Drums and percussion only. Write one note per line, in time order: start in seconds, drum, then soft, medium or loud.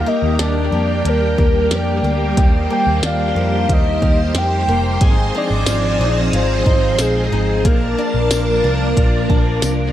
0.39 snare loud
0.39 closed hi-hat medium
1.05 closed hi-hat medium
1.38 kick medium
1.71 snare loud
1.71 closed hi-hat medium
2.37 kick loud
2.37 closed hi-hat medium
3.03 snare loud
3.03 closed hi-hat medium
3.69 kick medium
3.69 closed hi-hat medium
4.02 kick medium
4.35 snare medium
4.35 closed hi-hat medium
5.01 kick loud
5.01 closed hi-hat medium
5.66 snare loud
5.66 closed hi-hat medium
5.66 tambourine medium
6.33 closed hi-hat medium
6.66 kick medium
6.99 snare loud
6.99 closed hi-hat medium
6.99 tambourine medium
7.65 kick loud
7.65 closed hi-hat medium
8.31 snare loud
8.31 closed hi-hat medium
8.31 tambourine medium
8.97 kick medium
8.97 closed hi-hat medium
9.30 kick medium
9.62 snare loud
9.62 closed hi-hat medium
9.62 tambourine medium